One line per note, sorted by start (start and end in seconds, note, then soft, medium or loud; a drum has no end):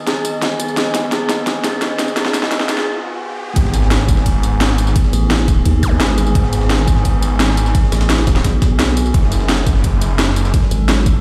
0.00 3.52 D#3 medium
0.00 3.52 B3 medium
0.00 3.52 G#4 medium
0.00 riser medium
0.07 0.24 G#4 loud
0.07 snare medium
0.07 closed hi-hat medium
0.25 0.37 D#5 medium
0.25 closed hi-hat loud
0.25 tambourine medium
0.42 snare medium
0.42 closed hi-hat medium
0.60 0.76 G#4 loud
0.60 closed hi-hat loud
0.60 tambourine medium
0.68 tambourine soft
0.77 0.89 D#5 medium
0.77 snare medium
0.77 closed hi-hat medium
0.95 snare medium
0.95 closed hi-hat loud
0.95 tambourine medium
1.12 1.28 G#4 loud
1.12 snare medium
1.12 closed hi-hat medium
1.29 1.41 D#5 medium
1.29 snare medium
1.29 closed hi-hat medium
1.29 tambourine medium
1.47 snare medium
1.47 closed hi-hat medium
1.64 1.81 G#4 loud
1.64 snare medium
1.64 closed hi-hat medium
1.64 tambourine medium
1.82 1.94 D#5 medium
1.82 snare medium
1.82 closed hi-hat medium
1.99 snare medium
1.99 closed hi-hat loud
1.99 tambourine medium
2.08 tambourine soft
2.17 2.33 G#4 loud
2.17 snare medium
2.17 closed hi-hat medium
2.25 snare medium
2.34 2.46 D#5 medium
2.34 snare loud
2.34 closed hi-hat medium
2.34 tambourine medium
2.43 snare medium
2.51 snare loud
2.51 closed hi-hat medium
2.60 snare medium
2.69 2.85 G#4 loud
2.69 snare loud
2.69 closed hi-hat medium
2.69 tambourine medium
2.78 snare medium
3.56 4.94 G#1 loud
3.56 9.10 D#3 medium
3.56 9.10 B3 medium
3.56 9.10 G#4 medium
3.56 kick loud
3.56 closed hi-hat loud
3.56 ride medium
3.56 sub drop medium
3.65 snare soft
3.74 closed hi-hat medium
3.74 ride medium
3.74 tambourine medium
3.82 snare soft
3.91 snare loud
3.91 closed hi-hat loud
3.91 ride medium
4.00 snare soft
4.08 kick loud
4.08 closed hi-hat medium
4.08 ride medium
4.08 tambourine medium
4.17 snare medium
4.26 kick medium
4.26 closed hi-hat medium
4.26 ride medium
4.43 closed hi-hat medium
4.43 ride medium
4.43 tambourine medium
4.61 snare loud
4.61 closed hi-hat loud
4.61 open hi-hat medium
4.70 snare soft
4.78 closed hi-hat medium
4.78 ride medium
4.78 tambourine medium
4.87 snare soft
4.87 tambourine soft
4.96 kick loud
4.96 closed hi-hat loud
4.96 ride medium
5.04 snare soft
5.13 5.64 A1 medium
5.13 closed hi-hat medium
5.13 ride medium
5.13 tambourine medium
5.31 snare loud
5.31 closed hi-hat loud
5.31 ride medium
5.48 kick loud
5.48 closed hi-hat medium
5.48 ride medium
5.48 tambourine medium
5.65 5.99 D#2 loud
5.65 kick medium
5.65 closed hi-hat loud
5.65 ride medium
5.83 kick loud
5.83 closed hi-hat medium
5.83 ride medium
5.83 tambourine medium
5.83 zap medium
6.00 6.16 G#1 medium
6.00 snare loud
6.00 closed hi-hat loud
6.00 ride medium
6.18 6.34 G#1 loud
6.18 closed hi-hat medium
6.18 ride medium
6.18 tambourine medium
6.27 tambourine soft
6.35 7.73 G#1 loud
6.35 kick loud
6.35 closed hi-hat loud
6.35 ride medium
6.44 snare soft
6.53 closed hi-hat medium
6.53 ride medium
6.53 tambourine medium
6.61 snare soft
6.70 snare loud
6.70 closed hi-hat loud
6.70 ride medium
6.79 snare soft
6.88 kick loud
6.88 closed hi-hat medium
6.88 ride medium
6.88 tambourine medium
6.96 snare medium
7.05 kick medium
7.05 closed hi-hat medium
7.05 ride medium
7.22 closed hi-hat medium
7.22 ride medium
7.22 tambourine medium
7.40 snare loud
7.40 closed hi-hat loud
7.40 open hi-hat medium
7.49 snare soft
7.57 closed hi-hat medium
7.57 ride medium
7.57 tambourine medium
7.66 snare soft
7.66 tambourine soft
7.75 kick loud
7.75 closed hi-hat loud
7.75 ride medium
7.83 snare soft
7.92 8.43 A1 loud
7.92 snare loud
7.92 closed hi-hat medium
7.92 ride medium
7.92 tambourine medium
8.01 snare loud
8.01 ride medium
8.01 tambourine soft
8.10 snare loud
8.10 closed hi-hat medium
8.10 ride medium
8.18 snare loud
8.18 ride medium
8.27 kick loud
8.27 snare loud
8.27 closed hi-hat medium
8.27 ride medium
8.27 tambourine medium
8.36 snare loud
8.36 snare soft
8.36 ride medium
8.44 9.13 B1 loud
8.44 kick medium
8.44 snare loud
8.44 closed hi-hat medium
8.44 ride medium
8.62 kick loud
8.62 snare loud
8.62 closed hi-hat medium
8.62 ride medium
8.62 tambourine medium
8.79 snare loud
8.79 closed hi-hat medium
8.79 ride medium
8.97 closed hi-hat medium
8.97 ride medium
8.97 tambourine medium
9.06 tambourine soft
9.14 10.52 F#1 loud
9.14 11.21 F#3 medium
9.14 11.21 C#4 medium
9.14 11.21 A4 medium
9.14 kick loud
9.14 closed hi-hat medium
9.14 ride medium
9.23 snare soft
9.32 closed hi-hat medium
9.32 ride medium
9.32 tambourine medium
9.40 snare soft
9.49 snare loud
9.49 closed hi-hat medium
9.49 ride medium
9.58 snare soft
9.67 kick loud
9.67 closed hi-hat medium
9.67 ride medium
9.67 tambourine medium
9.75 snare medium
9.84 kick medium
9.84 closed hi-hat medium
9.84 ride medium
10.01 closed hi-hat medium
10.01 ride medium
10.01 tambourine medium
10.19 snare loud
10.19 closed hi-hat medium
10.19 open hi-hat medium
10.28 snare soft
10.36 closed hi-hat medium
10.36 ride medium
10.36 tambourine medium
10.45 snare soft
10.45 tambourine soft
10.54 kick loud
10.54 closed hi-hat medium
10.54 ride medium
10.63 snare soft
10.71 11.21 G#1 loud
10.71 closed hi-hat medium
10.71 ride medium
10.71 tambourine medium
10.89 snare loud
10.89 closed hi-hat medium
10.89 ride medium
11.06 kick loud
11.06 closed hi-hat medium
11.06 ride medium
11.06 tambourine medium